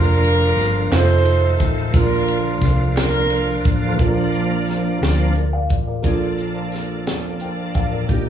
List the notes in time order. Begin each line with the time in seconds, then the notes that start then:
Already playing: F1 D3 F3 A#3 D4 F4 A#4
0.24 ride
0.56 G1, snare, ride
0.90 F1 D#3 A3 C4 D#4 F4 A4, snare, clap, ride
0.94 C5
1.25 ride
1.60 A1, kick, ride
1.91 A#1 A#2 D3 F3 A#3 D4 F4, kick, ride
1.96 D4 F4 A#4
2.28 ride
2.61 C2, kick, snare, ride
2.97 D4 F4 A#4, snare, clap, ride
3.30 ride
3.65 A1, kick, ride
3.96 A#1 A#2 A#3 D4, kick, closed hi-hat
4.01 F3 A#3 D4 F4 A4
4.09 A#4
4.34 closed hi-hat
4.67 snare, closed hi-hat
5.01 D2 F3 A#3 D4, snare, closed hi-hat
5.35 A#4 D5, closed hi-hat
5.53 D5 F5
5.70 A1, kick, closed hi-hat
5.87 A#4 D5
6.02 A#1 A#2 F3 A#3 D4 G#4, kick, closed hi-hat
6.06 F4 A4
6.38 closed hi-hat
6.72 snare, closed hi-hat
7.07 snare, closed hi-hat
7.40 G5, closed hi-hat
7.74 A1 D5 F5, kick, closed hi-hat
7.92 A#4 D5
8.07 A#1 A#2 D#3 A#3 D4 D#4 G4 D5, kick, closed hi-hat
8.13 G4